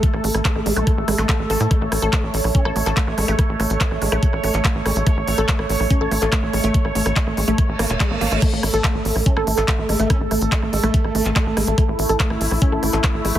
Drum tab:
CC |----------------|----------------|----------------|----------------|
HH |x-oxx-oxx-oxx-ox|x-oxx-oox-oxx-ox|x-oxx-oxx-oxx-ox|x-oxx-oox-oxx-ox|
CP |----x------xx---|----x------xx---|----x------xx---|----x------xx---|
SD |-r-r-r--r-r-r--r|r-r-r--r-r-r--r-|r-r--r-r-r--r-r-|r--r-r-r--r-r-r-|
BD |o---o---o---o---|o---o---o---o---|o---o---o---o---|o---o---o---o---|

CC |----------------|x---------------|----------------|----------------|
HH |x-oxx-oxx-oxx-ox|x-oxx-oox-oxx-ox|x-oxx-oxx-oxx-ox|x-oxx-oox-oxx-ox|
CP |----x------xx---|----x------xx---|----x------xx---|----x------xx---|
SD |-r-r-r--r-r-r--r|r-r-r--r-r-r--r-|r-r--r-r-r--r-r-|r--r-r-r--r-r-r-|
BD |o---o---o---o---|o---o---o---o---|o---o---o---o---|o---o---o---o---|